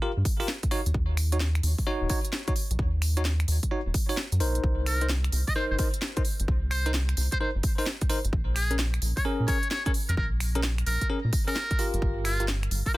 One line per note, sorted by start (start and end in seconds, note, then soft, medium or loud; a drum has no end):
0.02 0.11 F4 medium
0.02 0.11 G4 medium
0.02 0.11 A#4 medium
0.17 0.23 G2 medium
0.25 kick loud
0.25 open hi-hat loud
0.40 0.48 F4 medium
0.40 0.48 G4 medium
0.40 0.48 A#4 loud
0.40 open hi-hat medium
0.48 snare loud
0.63 kick loud
0.63 closed hi-hat medium
0.71 0.80 D#4 medium
0.71 0.80 F#4 medium
0.71 0.80 C#5 loud
0.71 open hi-hat loud
0.86 0.92 D#2 loud
0.86 closed hi-hat medium
0.94 1.60 D#2 loud
0.94 kick loud
1.17 finger snap medium
1.17 open hi-hat loud
1.32 1.37 D#4 medium
1.32 1.37 F#4 medium
1.32 1.37 C#5 medium
1.32 closed hi-hat medium
1.40 snare loud
1.55 finger snap medium
1.55 closed hi-hat soft
1.63 1.75 D#2 loud
1.63 open hi-hat loud
1.78 kick medium
1.78 open hi-hat medium
1.87 2.08 D#4 medium
1.87 2.08 F#4 medium
1.87 2.08 C#5 loud
2.01 2.08 D#1 medium
2.10 2.19 D#4 medium
2.10 2.19 F#4 medium
2.10 2.19 C#5 medium
2.10 kick loud
2.10 open hi-hat loud
2.25 closed hi-hat medium
2.33 snare loud
2.48 2.52 D#4 medium
2.48 2.52 F#4 medium
2.48 2.53 C#5 medium
2.48 kick medium
2.48 closed hi-hat medium
2.56 open hi-hat loud
2.71 2.77 A#1 medium
2.71 closed hi-hat medium
2.79 3.45 D#2 loud
2.79 kick loud
3.02 finger snap medium
3.02 open hi-hat loud
3.17 3.22 D#4 medium
3.17 3.22 F#4 medium
3.17 3.22 C#5 loud
3.17 closed hi-hat medium
3.25 snare loud
3.40 finger snap medium
3.40 closed hi-hat soft
3.48 3.60 D#2 loud
3.48 open hi-hat loud
3.63 kick medium
3.63 closed hi-hat medium
3.71 3.80 D#4 medium
3.71 3.80 F#4 medium
3.71 3.80 C#5 medium
3.86 3.92 D#1 medium
3.94 kick loud
3.94 open hi-hat loud
4.09 4.17 D#4 medium
4.09 4.17 F#4 medium
4.09 4.17 C#5 medium
4.09 open hi-hat medium
4.17 snare loud
4.32 4.42 F#2 medium
4.32 closed hi-hat medium
4.40 4.60 A#1 medium
4.40 4.98 D#4 medium
4.40 4.98 A#4 medium
4.40 4.98 C5 medium
4.40 open hi-hat loud
4.55 closed hi-hat medium
4.64 5.30 C2 loud
4.64 kick loud
4.86 5.08 A#4 medium
4.86 finger snap medium
4.86 open hi-hat loud
5.01 5.06 D#4 medium
5.01 5.06 A#4 medium
5.01 5.06 C5 medium
5.01 closed hi-hat medium
5.09 snare loud
5.24 finger snap medium
5.24 closed hi-hat soft
5.32 5.44 C2 loud
5.32 open hi-hat loud
5.47 5.54 D#5 medium
5.47 kick medium
5.47 open hi-hat medium
5.56 5.77 D#4 medium
5.56 5.77 A#4 medium
5.56 5.65 C5 medium
5.56 5.77 C5 loud
5.71 5.77 G1 medium
5.71 5.76 C5 medium
5.79 5.88 D#4 medium
5.79 5.88 A#4 medium
5.79 5.88 C5 medium
5.79 kick loud
5.79 open hi-hat loud
5.94 closed hi-hat medium
6.02 snare loud
6.17 6.22 D#4 medium
6.17 6.22 A#4 medium
6.17 6.22 C5 medium
6.17 kick loud
6.17 closed hi-hat medium
6.25 open hi-hat loud
6.40 6.46 G1 loud
6.40 closed hi-hat medium
6.48 7.14 C2 loud
6.48 kick loud
6.71 6.92 C5 medium
6.71 finger snap medium
6.71 open hi-hat loud
6.86 6.91 D#4 medium
6.86 6.91 A#4 medium
6.86 6.91 C5 medium
6.86 closed hi-hat medium
6.94 snare loud
7.09 finger snap medium
7.09 closed hi-hat soft
7.17 7.29 C2 loud
7.17 open hi-hat loud
7.32 7.37 C5 medium
7.32 kick medium
7.32 closed hi-hat medium
7.40 7.49 D#4 medium
7.40 7.49 A#4 medium
7.40 7.50 C5 medium
7.40 7.49 C5 medium
7.55 7.62 G1 medium
7.63 kick loud
7.63 open hi-hat loud
7.78 7.86 D#4 medium
7.78 7.86 A#4 medium
7.78 7.86 C5 loud
7.78 open hi-hat medium
7.86 snare loud
8.01 kick loud
8.01 closed hi-hat medium
8.10 8.18 D#4 medium
8.10 8.18 A#4 medium
8.10 8.18 C5 loud
8.10 open hi-hat loud
8.25 8.31 G1 loud
8.25 closed hi-hat medium
8.33 8.99 A#1 loud
8.33 kick loud
8.55 8.77 G#4 medium
8.55 finger snap medium
8.55 open hi-hat loud
8.71 8.76 C#4 medium
8.71 8.76 G#4 medium
8.71 8.76 A#4 medium
8.71 closed hi-hat medium
8.79 snare loud
8.94 finger snap medium
8.94 closed hi-hat soft
9.02 9.13 A#1 loud
9.02 open hi-hat loud
9.17 9.23 C#5 medium
9.17 kick medium
9.17 open hi-hat medium
9.25 9.46 C#4 medium
9.25 9.46 G#4 medium
9.25 9.46 A#4 loud
9.40 9.46 A#2 medium
9.48 9.57 C#4 medium
9.48 9.57 G#4 medium
9.48 9.57 A#4 medium
9.48 9.69 C#5 medium
9.48 kick loud
9.48 open hi-hat loud
9.63 closed hi-hat medium
9.71 9.81 C#5 medium
9.71 snare loud
9.86 9.91 C#4 medium
9.86 9.91 G#4 medium
9.86 9.91 A#4 medium
9.86 9.91 C#5 medium
9.86 kick loud
9.86 closed hi-hat soft
9.94 open hi-hat loud
10.09 10.15 F2 loud
10.09 10.14 A#4 medium
10.09 closed hi-hat medium
10.17 10.84 A#1 loud
10.17 10.27 A#4 medium
10.17 kick loud
10.40 finger snap medium
10.40 open hi-hat loud
10.55 10.60 C#4 medium
10.55 10.60 G#4 medium
10.55 10.60 A#4 medium
10.55 closed hi-hat medium
10.63 snare loud
10.78 finger snap medium
10.78 closed hi-hat soft
10.86 10.98 A#1 loud
10.86 11.08 A#4 medium
10.86 open hi-hat loud
11.01 kick medium
11.01 closed hi-hat medium
11.10 11.18 C#4 medium
11.10 11.18 G#4 medium
11.10 11.18 A#4 medium
11.24 11.31 A#2 medium
11.33 kick loud
11.33 open hi-hat loud
11.48 11.55 C#4 medium
11.48 11.55 G#4 medium
11.48 11.55 A#4 medium
11.48 11.85 A#4 medium
11.48 open hi-hat medium
11.56 snare loud
11.71 kick loud
11.71 closed hi-hat medium
11.79 12.36 F4 medium
11.79 12.36 G4 medium
11.79 12.37 A#4 medium
11.79 open hi-hat loud
11.94 12.00 G1 loud
11.94 closed hi-hat medium
12.02 12.68 G1 loud
12.02 kick loud
12.25 12.46 F4 medium
12.25 finger snap medium
12.25 open hi-hat loud
12.40 12.45 F4 medium
12.40 12.45 G4 medium
12.40 12.45 A#4 medium
12.40 closed hi-hat medium
12.48 snare loud
12.63 finger snap medium
12.63 closed hi-hat soft
12.71 12.83 G1 loud
12.71 open hi-hat loud
12.86 12.93 A#4 medium
12.86 kick medium
12.86 open hi-hat medium